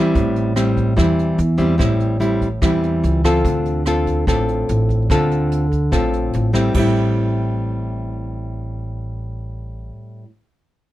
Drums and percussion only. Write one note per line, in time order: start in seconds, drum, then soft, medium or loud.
0.15 kick medium
0.15 closed hi-hat soft
0.36 closed hi-hat soft
0.56 cross-stick medium
0.56 closed hi-hat soft
0.77 kick soft
0.77 closed hi-hat soft
0.98 kick medium
0.98 cross-stick medium
0.98 closed hi-hat soft
1.19 closed hi-hat soft
1.38 closed hi-hat soft
1.59 kick soft
1.59 closed hi-hat soft
1.80 kick medium
1.80 cross-stick medium
1.80 closed hi-hat soft
2.00 closed hi-hat soft
2.21 closed hi-hat soft
2.41 kick soft
2.41 closed hi-hat soft
2.62 kick medium
2.62 cross-stick medium
2.62 closed hi-hat soft
2.83 closed hi-hat soft
3.04 closed hi-hat soft
3.24 kick soft
3.24 cross-stick medium
3.24 closed hi-hat soft
3.45 kick medium
3.45 closed hi-hat soft
3.65 closed hi-hat soft
3.86 cross-stick soft
3.86 closed hi-hat soft
4.07 kick soft
4.07 closed hi-hat soft
4.27 kick medium
4.27 cross-stick medium
4.27 closed hi-hat soft
4.48 closed hi-hat soft
4.68 closed hi-hat soft
4.89 kick soft
4.89 closed hi-hat soft
5.10 kick medium
5.10 cross-stick medium
5.10 closed hi-hat soft
5.31 closed hi-hat soft
5.52 closed hi-hat soft
5.72 kick soft
5.72 closed hi-hat soft
5.92 kick soft
5.92 cross-stick soft
5.92 closed hi-hat soft
6.13 closed hi-hat soft
6.33 closed hi-hat soft
6.54 kick soft
6.54 cross-stick medium
6.54 closed hi-hat soft
6.74 kick medium
6.74 crash medium